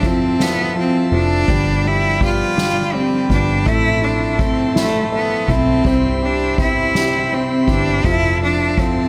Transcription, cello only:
0, 0, Header, 1, 2, 480
1, 0, Start_track
1, 0, Tempo, 728421
1, 981, Time_signature, 6, 3, 24, 8
1, 5987, End_track
2, 0, Start_track
2, 0, Title_t, "Cello"
2, 0, Program_c, 0, 42
2, 42, Note_on_c, 0, 60, 91
2, 279, Note_on_c, 0, 59, 108
2, 288, Note_off_c, 0, 60, 0
2, 510, Note_off_c, 0, 59, 0
2, 516, Note_on_c, 0, 60, 85
2, 732, Note_off_c, 0, 60, 0
2, 756, Note_on_c, 0, 62, 97
2, 1235, Note_on_c, 0, 64, 100
2, 1245, Note_off_c, 0, 62, 0
2, 1468, Note_off_c, 0, 64, 0
2, 1478, Note_on_c, 0, 65, 108
2, 1940, Note_on_c, 0, 60, 88
2, 1950, Note_off_c, 0, 65, 0
2, 2180, Note_off_c, 0, 60, 0
2, 2187, Note_on_c, 0, 62, 89
2, 2430, Note_on_c, 0, 64, 111
2, 2440, Note_off_c, 0, 62, 0
2, 2662, Note_on_c, 0, 62, 90
2, 2672, Note_off_c, 0, 64, 0
2, 2906, Note_on_c, 0, 60, 94
2, 2916, Note_off_c, 0, 62, 0
2, 3144, Note_off_c, 0, 60, 0
2, 3153, Note_on_c, 0, 57, 99
2, 3371, Note_off_c, 0, 57, 0
2, 3397, Note_on_c, 0, 59, 91
2, 3626, Note_on_c, 0, 60, 91
2, 3636, Note_off_c, 0, 59, 0
2, 4120, Note_on_c, 0, 62, 84
2, 4130, Note_off_c, 0, 60, 0
2, 4348, Note_off_c, 0, 62, 0
2, 4352, Note_on_c, 0, 64, 97
2, 4841, Note_on_c, 0, 60, 87
2, 4851, Note_off_c, 0, 64, 0
2, 5071, Note_off_c, 0, 60, 0
2, 5080, Note_on_c, 0, 62, 92
2, 5310, Note_on_c, 0, 64, 108
2, 5320, Note_off_c, 0, 62, 0
2, 5546, Note_off_c, 0, 64, 0
2, 5558, Note_on_c, 0, 62, 89
2, 5799, Note_on_c, 0, 60, 85
2, 5809, Note_off_c, 0, 62, 0
2, 5987, Note_off_c, 0, 60, 0
2, 5987, End_track
0, 0, End_of_file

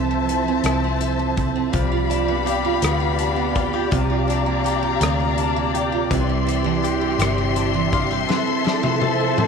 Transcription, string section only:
0, 0, Header, 1, 2, 480
1, 0, Start_track
1, 0, Tempo, 727273
1, 1149, Time_signature, 6, 3, 24, 8
1, 6253, End_track
2, 0, Start_track
2, 0, Title_t, "String section"
2, 0, Program_c, 0, 48
2, 0, Note_on_c, 0, 53, 67
2, 0, Note_on_c, 0, 72, 56
2, 0, Note_on_c, 0, 76, 60
2, 0, Note_on_c, 0, 81, 70
2, 1137, Note_off_c, 0, 53, 0
2, 1137, Note_off_c, 0, 76, 0
2, 1138, Note_off_c, 0, 81, 0
2, 1139, Note_off_c, 0, 72, 0
2, 1140, Note_on_c, 0, 77, 62
2, 1142, Note_on_c, 0, 67, 65
2, 1144, Note_on_c, 0, 74, 57
2, 1145, Note_on_c, 0, 83, 68
2, 2571, Note_off_c, 0, 77, 0
2, 2573, Note_off_c, 0, 83, 0
2, 2585, Note_on_c, 0, 77, 59
2, 2587, Note_on_c, 0, 82, 72
2, 4000, Note_off_c, 0, 67, 0
2, 4014, Note_off_c, 0, 77, 0
2, 4014, Note_off_c, 0, 82, 0
2, 4025, Note_on_c, 0, 67, 69
2, 4027, Note_on_c, 0, 84, 76
2, 4028, Note_on_c, 0, 76, 64
2, 5443, Note_off_c, 0, 74, 0
2, 5455, Note_off_c, 0, 67, 0
2, 5471, Note_on_c, 0, 60, 69
2, 5473, Note_on_c, 0, 69, 69
2, 5473, Note_on_c, 0, 81, 67
2, 6253, Note_off_c, 0, 60, 0
2, 6253, Note_off_c, 0, 69, 0
2, 6253, Note_off_c, 0, 76, 0
2, 6253, Note_off_c, 0, 81, 0
2, 6253, Note_off_c, 0, 84, 0
2, 6253, End_track
0, 0, End_of_file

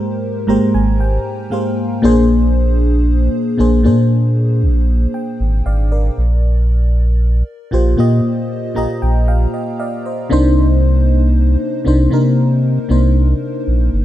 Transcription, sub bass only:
0, 0, Header, 1, 2, 480
1, 0, Start_track
1, 0, Key_signature, -3, "minor"
1, 0, Tempo, 1034483
1, 944, Time_signature, 4, 2, 24, 8
1, 6518, End_track
2, 0, Start_track
2, 0, Title_t, "Sub bass"
2, 0, Program_c, 0, 38
2, 223, Note_on_c, 0, 32, 51
2, 272, Note_off_c, 0, 32, 0
2, 345, Note_on_c, 0, 32, 81
2, 550, Note_off_c, 0, 32, 0
2, 946, Note_on_c, 0, 34, 102
2, 1527, Note_off_c, 0, 34, 0
2, 1668, Note_on_c, 0, 34, 87
2, 1788, Note_on_c, 0, 46, 96
2, 1795, Note_off_c, 0, 34, 0
2, 2147, Note_on_c, 0, 34, 93
2, 2154, Note_off_c, 0, 46, 0
2, 2352, Note_off_c, 0, 34, 0
2, 2507, Note_on_c, 0, 32, 92
2, 2609, Note_off_c, 0, 32, 0
2, 2627, Note_on_c, 0, 32, 89
2, 2831, Note_off_c, 0, 32, 0
2, 2868, Note_on_c, 0, 34, 93
2, 3447, Note_off_c, 0, 34, 0
2, 3587, Note_on_c, 0, 34, 87
2, 3689, Note_off_c, 0, 34, 0
2, 3707, Note_on_c, 0, 46, 96
2, 3809, Note_off_c, 0, 46, 0
2, 4069, Note_on_c, 0, 34, 48
2, 4116, Note_off_c, 0, 34, 0
2, 4189, Note_on_c, 0, 34, 85
2, 4393, Note_off_c, 0, 34, 0
2, 4788, Note_on_c, 0, 36, 103
2, 5367, Note_off_c, 0, 36, 0
2, 5506, Note_on_c, 0, 36, 86
2, 5608, Note_off_c, 0, 36, 0
2, 5626, Note_on_c, 0, 48, 88
2, 5934, Note_off_c, 0, 48, 0
2, 5986, Note_on_c, 0, 36, 89
2, 6191, Note_off_c, 0, 36, 0
2, 6346, Note_on_c, 0, 34, 87
2, 6448, Note_off_c, 0, 34, 0
2, 6466, Note_on_c, 0, 31, 90
2, 6518, Note_off_c, 0, 31, 0
2, 6518, End_track
0, 0, End_of_file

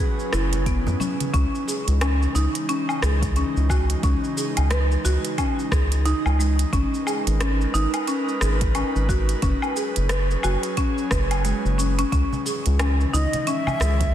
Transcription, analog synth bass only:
0, 0, Header, 1, 2, 480
1, 0, Start_track
1, 0, Tempo, 674157
1, 953, Time_signature, 4, 2, 24, 8
1, 10071, End_track
2, 0, Start_track
2, 0, Title_t, "Analog synth bass"
2, 0, Program_c, 0, 38
2, 236, Note_on_c, 0, 30, 92
2, 616, Note_on_c, 0, 42, 104
2, 627, Note_off_c, 0, 30, 0
2, 676, Note_off_c, 0, 42, 0
2, 952, Note_on_c, 0, 37, 98
2, 1041, Note_off_c, 0, 37, 0
2, 1336, Note_on_c, 0, 37, 96
2, 1614, Note_off_c, 0, 37, 0
2, 1673, Note_on_c, 0, 37, 91
2, 1762, Note_off_c, 0, 37, 0
2, 2156, Note_on_c, 0, 37, 90
2, 2451, Note_off_c, 0, 37, 0
2, 2540, Note_on_c, 0, 37, 103
2, 2816, Note_off_c, 0, 37, 0
2, 2873, Note_on_c, 0, 37, 97
2, 2962, Note_off_c, 0, 37, 0
2, 3258, Note_on_c, 0, 37, 87
2, 3535, Note_off_c, 0, 37, 0
2, 3596, Note_on_c, 0, 37, 88
2, 3683, Note_off_c, 0, 37, 0
2, 4072, Note_on_c, 0, 37, 93
2, 4369, Note_off_c, 0, 37, 0
2, 4456, Note_on_c, 0, 37, 93
2, 4734, Note_off_c, 0, 37, 0
2, 4790, Note_on_c, 0, 32, 102
2, 4880, Note_off_c, 0, 32, 0
2, 5174, Note_on_c, 0, 32, 87
2, 5453, Note_off_c, 0, 32, 0
2, 5510, Note_on_c, 0, 32, 90
2, 5600, Note_off_c, 0, 32, 0
2, 5991, Note_on_c, 0, 32, 88
2, 6289, Note_off_c, 0, 32, 0
2, 6376, Note_on_c, 0, 32, 95
2, 6654, Note_off_c, 0, 32, 0
2, 6712, Note_on_c, 0, 30, 100
2, 6801, Note_off_c, 0, 30, 0
2, 7098, Note_on_c, 0, 30, 96
2, 7375, Note_off_c, 0, 30, 0
2, 7433, Note_on_c, 0, 30, 94
2, 7522, Note_off_c, 0, 30, 0
2, 7911, Note_on_c, 0, 30, 93
2, 8209, Note_off_c, 0, 30, 0
2, 8296, Note_on_c, 0, 30, 103
2, 8574, Note_off_c, 0, 30, 0
2, 8631, Note_on_c, 0, 37, 96
2, 8721, Note_off_c, 0, 37, 0
2, 9017, Note_on_c, 0, 37, 87
2, 9295, Note_off_c, 0, 37, 0
2, 9353, Note_on_c, 0, 37, 95
2, 9442, Note_off_c, 0, 37, 0
2, 9833, Note_on_c, 0, 37, 89
2, 10071, Note_off_c, 0, 37, 0
2, 10071, End_track
0, 0, End_of_file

